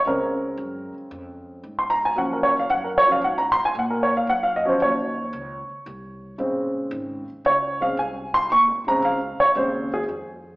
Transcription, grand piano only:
X:1
M:4/4
L:1/16
Q:"Swing" 1/4=114
K:Bbm
V:1 name="Grand piano"
B6 z6 z c' b a | g B d f g B d f g b c' a g B d f | g f e c d12 | z8 d2 f2 a2 c'2 |
d'2 b2 f2 d2 c2 A2 z4 |]
V:2 name="Grand piano" clef=bass
[D,A,C]16 | [F,G,D]2 z4 [F,G,D]2 z8 | z2 [F,G,D]2 z12 | [D,A,C]6 z4 [D,A,C]2 z4 |
z2 [D,A,C]2 z4 [D,A,C]2 z6 |]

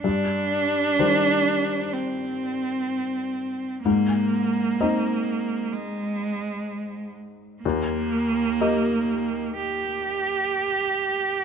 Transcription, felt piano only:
X:1
M:4/4
L:1/8
Q:1/4=63
K:Cm
V:1 name="Felt piano"
G,,2 [E,G,c]6 | A,,2 [CEe]6 | E,,2 [B,Ge]6 |]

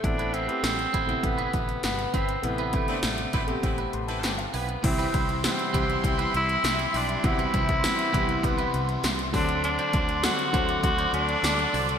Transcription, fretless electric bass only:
X:1
M:4/4
L:1/16
Q:1/4=100
K:Am
V:1 name="Fretless electric bass" clef=bass
A,,,4 A,,,2 A,,,2 A,,,2 A,,,2 G,,,2 G,,,2 | A,,,4 A,,,2 A,,,2 A,,,2 A,,,2 G,,,2 B,,,2 | [K:Clyd] C,,2 C,,3 z C,,2 C,,2 C,,2 C,,2 B,,,2 | C,,2 C,,3 z C,,2 C,,2 C,,2 C,,2 D,,2- |
D,,2 D,,3 z D,,2 D,,2 D,,2 D,,2 C,,2 |]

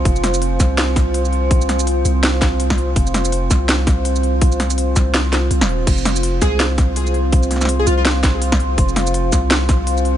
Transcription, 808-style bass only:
X:1
M:4/4
L:1/16
Q:"Swing 16ths" 1/4=165
K:Cphr
V:1 name="808-style bass" clef=bass
F,,,6 C,,8- C,,2- | C,,6 C,,8- C,,2 | F,,,6 C,,8- C,,2- | C,,6 C,,6 C,, E,,,3 |
F,,,6 C,,8- C,,2- | C,,6 C,,8- C,,2 | F,,,6 C,,8- C,,2 |]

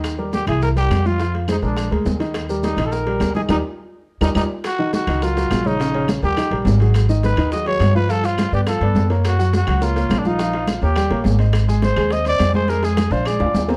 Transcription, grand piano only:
X:1
M:4/4
L:1/8
Q:1/4=209
K:Eb
V:1 name="Grand piano"
[E,Ee] [G,GB]2 [_F,_F_f]2 [G,GB]2 [=F,=F=f] | [F,Ff]2 [A,Ac] [A,AB]2 [A,AB]2 [E,Ee]- | [E,Ee] [G,GB]2 [E,Ee]2 [G,GB]2 [E,Ee] | [EGB] z4 [EGB] [EGB] z |
z [E,Ee]2 [E,Ee] [_G,_GB] [G,GB]2 [_D,_D_d] | [_D,_D_d] [D,Dd]2 [G,GB] [E,Ee] [G,GB]2 [_G,_GA]- | [_G,_GA] [E,Ee]2 [E,Ee] [G,GA] [G,GA]2 [F,Ff] | [F,Ff] [F,Ff]2 [=B,=Bd] [F,Ff] [B,Bd]2 [_B,_B_d]- |
[B,B_d] [_G,_G_g]2 [G,Gg] [B,Bd] [B,Bd]2 [F,Ff] | [F,Ff] [F,Ff]2 [B,B_d] [G,Gg] [B,Bd]2 [Cce]- | [Cce] [A,Aa]2 [A,Aa] [Cce] [Cce]2 [A,Aa] | [A,Aa] [A,Aa]2 [Ddf] [A,Aa] [Ddf]2 [B,Bc] |]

